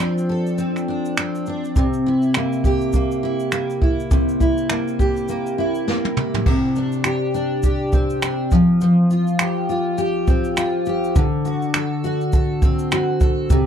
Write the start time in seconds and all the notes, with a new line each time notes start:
Already playing: F3 D4 A4
0.00 C4, shaker
0.18 shaker
0.29 A4
0.47 shaker
0.58 C4, shaker
0.76 finger snap, shaker
0.88 D4
1.05 shaker
1.17 C4, finger snap, shaker
1.35 shaker
1.46 D4, shaker
1.64 shaker
1.76 C3, kick, shaker
1.94 shaker
2.06 E4
2.22 shaker
2.34 A#3, finger snap, shaker
2.53 shaker
2.64 G4, kick, shaker
2.81 shaker
2.93 A#3, kick, shaker
3.11 shaker
3.23 E4
3.40 shaker
3.52 A#3, finger snap, shaker
3.70 shaker
3.82 E4, kick
4.00 shaker
4.11 C3, kick, shaker
4.29 shaker
4.40 E4, kick, shaker
4.57 shaker
4.70 A#3, finger snap, shaker
4.88 shaker
4.99 G4, kick, shaker
5.17 shaker
5.28 A#3, shaker
5.47 shaker
5.58 E4
5.75 shaker
5.87 A#3, snare
6.05 high tom
6.17 E4, mid tom
6.34 floor tom
6.46 C3, kick, crash
6.75 D4, shaker
6.92 shaker
7.04 G4, finger snap, shaker
7.34 D4, shaker
7.63 G4, kick, shaker
7.92 C4, kick, shaker
8.10 shaker
8.22 D4, finger snap, shaker
8.51 F3, kick, shaker
8.81 F3, shaker
9.11 F4, shaker
9.27 shaker
9.39 G4, finger snap, shaker
9.69 F4, shaker
9.98 G4, shaker
10.27 C4, kick, shaker
10.44 shaker
10.57 F4, finger snap, shaker
10.86 G4, shaker
11.04 shaker
11.15 D3, kick, shaker
11.45 F#4, shaker
11.62 shaker
11.74 A4, finger snap, shaker
12.04 F#4, shaker
12.21 shaker
12.32 A4, kick, shaker
12.62 C4, kick, shaker
12.79 shaker
12.92 F#4, finger snap, shaker
13.20 A4, kick, shaker
13.50 C3, kick, shaker